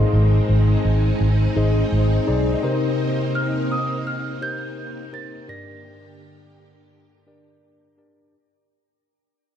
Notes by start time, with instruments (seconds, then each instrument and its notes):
Already playing: tine electric piano G#2 D#4 G#4 C5 D#5, string machine G#3 C4 D#4
0.13 fingered electric bass G#1
0.49 fingered electric bass G#1
0.85 fingered electric bass G#1
1.20 fingered electric bass G#1
1.56 fingered electric bass G#1, tine electric piano D#4 G#4 C5 D#5
1.92 fingered electric bass G#1
2.27 fingered electric bass B1, tine electric piano D#4 G#4 C5 D5
2.63 tine electric piano C3 D#4 G4 A#4 C5, string machine A#3
3.35 celesta F6
3.72 celesta D#6
4.07 celesta F6
4.41 tine electric piano D#4 G4 A#4 C5, celesta G6
5.13 tine electric piano D#4 G4 A#4 C5, celesta A6
5.48 tine electric piano G2 D4 G4 A#4 D5, string machine D3 G4, celesta A#6
7.27 tine electric piano D4 G4 A#4 D5
7.97 tine electric piano D4 G4 A#4 D5